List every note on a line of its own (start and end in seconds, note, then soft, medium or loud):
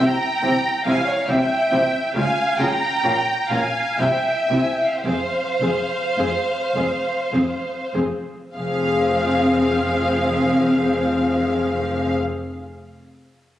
0.00 0.09 C2 medium
0.00 0.86 G5 medium
0.00 0.86 A#5 medium
0.42 0.51 C2 medium
0.42 0.50 C3 medium
0.42 0.50 C4 soft
0.42 0.50 E4 soft
0.85 0.94 C2 medium
0.85 0.94 C3 medium
0.85 0.94 C4 soft
0.85 0.94 E4 medium
0.85 1.07 F5 medium
0.85 1.07 G#5 medium
1.07 1.29 C#5 medium
1.07 1.29 F5 medium
1.28 1.37 C2 medium
1.28 1.37 C3 medium
1.28 1.36 C4 medium
1.28 1.36 E4 soft
1.28 2.15 E5 medium
1.28 2.15 G5 medium
1.71 1.80 C2 medium
1.71 1.80 C3 medium
1.71 1.79 C4 soft
1.71 1.79 E4 soft
2.15 2.23 C#2 medium
2.15 2.23 C#3 medium
2.15 2.24 G#3 soft
2.15 2.24 F4 soft
2.15 2.58 F5 medium
2.15 2.58 G#5 medium
2.58 2.68 C#2 soft
2.58 2.66 C#3 medium
2.58 2.67 G#3 soft
2.58 2.67 F4 soft
2.58 3.50 G5 medium
2.58 3.50 A#5 medium
3.04 3.12 A#1 soft
3.04 3.12 A#2 soft
3.04 3.12 C#4 soft
3.04 3.12 F4 soft
3.50 3.58 A#1 medium
3.50 3.58 A#2 soft
3.50 3.59 C#4 soft
3.50 3.58 F4 soft
3.50 3.99 F5 medium
3.50 3.99 G#5 medium
3.98 4.06 C2 medium
3.98 4.07 C3 medium
3.98 4.07 C4 soft
3.98 4.07 E4 soft
3.98 5.04 E5 medium
3.98 4.58 G5 medium
4.50 4.58 C2 soft
4.50 4.58 C3 soft
4.50 4.58 C4 soft
4.50 4.59 E4 soft
4.58 4.69 G#5 medium
4.69 4.81 G5 soft
4.82 4.93 F5 medium
4.92 5.04 G5 soft
5.04 5.12 F1 soft
5.04 5.12 F2 soft
5.04 5.13 C4 soft
5.04 5.13 G#4 soft
5.04 7.91 C5 medium
5.04 7.91 F5 medium
5.60 5.68 F1 soft
5.60 5.68 F2 soft
5.60 5.69 C4 soft
5.60 5.69 G#4 soft
6.17 6.26 F1 soft
6.17 6.25 F2 soft
6.17 6.27 C4 soft
6.17 6.26 G#4 soft
6.74 6.82 F1 soft
6.74 6.82 F2 soft
6.74 6.84 C4 soft
6.74 6.84 G#4 soft
7.33 7.41 F1 soft
7.33 7.41 F2 soft
7.33 7.42 C4 soft
7.33 7.42 G#4 soft
7.94 8.03 F1 soft
7.94 8.02 F2 soft
7.94 8.02 C4 soft
7.94 8.02 G#4 soft
8.55 12.12 F1 medium
8.55 12.13 F2 soft
8.55 12.13 C4 soft
8.55 12.13 G#4 soft
8.55 12.13 F5 medium